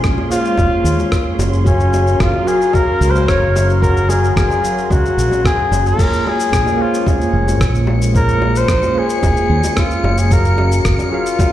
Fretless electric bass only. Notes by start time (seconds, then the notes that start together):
0.04 A#1
0.58 F1
0.84 D#2
1.39 F#1
2.20 F#1
3.01 C#2
3.28 F#1
4.36 F#1
4.90 C#2
5.17 A#1
5.71 F#1
6.53 A#1
7.33 F1
7.61 A#1
8.69 A#1
9.23 F1
9.50 D#2
10.04 F#1
10.85 F#1